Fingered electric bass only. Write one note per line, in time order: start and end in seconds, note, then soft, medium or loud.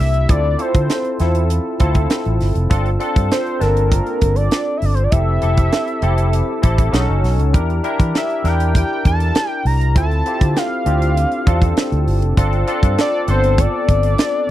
0.00 0.25 C2 medium
0.29 0.55 D2 medium
0.75 0.87 D3 medium
1.20 1.58 E2 medium
1.80 2.06 D2 medium
2.26 2.39 A1 medium
2.41 2.54 G1 medium
2.55 2.68 F1 medium
2.71 2.96 G1 loud
3.16 3.29 G2 medium
3.61 3.99 G1 medium
4.22 4.47 G1 medium
4.82 5.08 G1 medium
5.13 5.38 F1 loud
5.43 5.68 F1 medium
6.02 6.41 F1 medium
6.64 6.89 A1 medium
6.93 7.06 B1 medium
7.09 7.21 F#1 medium
7.24 7.39 B1 loud
7.39 7.52 C#2 medium
7.54 7.80 E2 medium
8.00 8.12 E3 loud
8.44 8.82 E2 medium
9.05 9.31 E2 medium
9.65 9.96 C2 medium
9.96 10.21 D2 loud
10.41 10.54 D3 medium
10.86 11.24 D2 medium
11.47 11.72 E2 medium
11.92 12.05 D2 medium
12.07 12.22 G1 medium
12.22 12.35 F1 medium
12.37 12.63 G1 loud
12.83 12.95 G2 medium
13.28 13.66 G1 loud
13.88 14.14 G1 medium